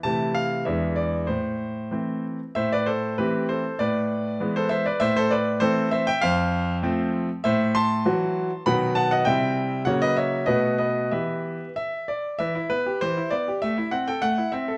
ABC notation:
X:1
M:2/4
L:1/16
Q:1/4=98
K:Am
V:1 name="Grand piano"
a2 f2 e2 d2 | c6 z2 | [ce] [Bd] [Ac]2 [GB]2 [Ac]2 | [Bd]4- [Bd] [Ac] [ce] [Bd] |
[ce] [Ac] [Bd]2 [Ac]2 [ce] [eg] | [cf]6 z2 | [K:Em] [ce]2 [ac']6 | [fb]2 [fa] [^df] [eg]4 |
[^cf] [B^d] [ce]2 [Bd]2 [Bd]2 | [Be]4 e2 d2 | e2 B2 c2 d2 | e2 f g f2 e2 |]
V:2 name="Grand piano"
[C,E,A,E]4 [E,,E,^G,D]4 | A,,4 [E,A,C]4 | A,,4 [E,A,C]4 | A,,4 [E,^G,B,]4 |
A,,4 [E,A,C]4 | F,,4 [F,A,C]4 | [K:Em] A,,4 [E,F,F]4 | [B,,^D,F,F]4 [C,G,CE]4 |
[^C,F,^A,F]4 [B,,=A,B,F]4 | [E,B,G]4 z4 | E, E B, G E, E B, G | A, E C A A, E C A |]